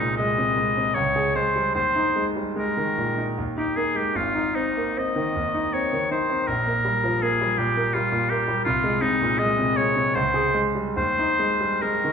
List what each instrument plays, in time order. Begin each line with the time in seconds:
Already playing: grand piano C2 C3 G#3, oboe D#4
0.00 grand piano A#2
0.17 grand piano G#3, oboe D#5
0.38 grand piano C3
0.57 grand piano G#3
0.77 grand piano C3
0.95 grand piano C#2, oboe C#5
1.16 grand piano G#4
1.35 grand piano G#3, oboe C5
1.56 grand piano G3
1.75 grand piano D#2, oboe C5
1.96 grand piano D#4
2.16 grand piano G#3
2.36 grand piano G3
2.56 grand piano G#3, oboe A#4
2.77 grand piano D#3
2.98 grand piano A#2
3.18 grand piano D#4
3.38 grand piano D#2
3.58 grand piano D#4, oboe G4
3.76 grand piano A#3, oboe G#4
3.95 grand piano G#3, oboe G4
4.15 grand piano G#1, oboe F4
4.35 grand piano D#4
4.55 grand piano C4, oboe D#4
4.77 grand piano A#3
4.97 grand piano C4, oboe D#5
5.16 grand piano D#3
5.36 grand piano D#2
5.54 grand piano D#4
5.73 grand piano C4, oboe C#5
5.93 grand piano D#3
6.11 grand piano D#4, oboe C5
6.30 grand piano C4
6.47 grand piano A#1, oboe A#4
6.67 grand piano A#3
6.85 grand piano G3
7.04 grand piano F3
7.22 grand piano A#3, oboe G#4
7.41 grand piano G3
7.58 grand piano A#2, oboe G4
7.77 grand piano A#3
7.94 grand piano G3, oboe F4
8.12 grand piano A#2
8.30 grand piano A#3, oboe G4
8.48 grand piano G3
8.65 grand piano C2, oboe F4
8.84 grand piano G#3
9.01 grand piano C3, oboe D#4
9.21 grand piano A#2
9.39 grand piano G#3, oboe D#5
9.59 grand piano C3
9.77 grand piano G#3, oboe C#5
9.96 grand piano C3
10.15 grand piano C#2, oboe C5
10.34 grand piano G#4
10.54 grand piano G#3
10.75 grand piano G3
10.96 grand piano D#2, oboe C5
11.19 grand piano D#4
11.39 grand piano G#3
11.61 grand piano G3
11.82 grand piano G#3, oboe A#4
12.04 grand piano D#3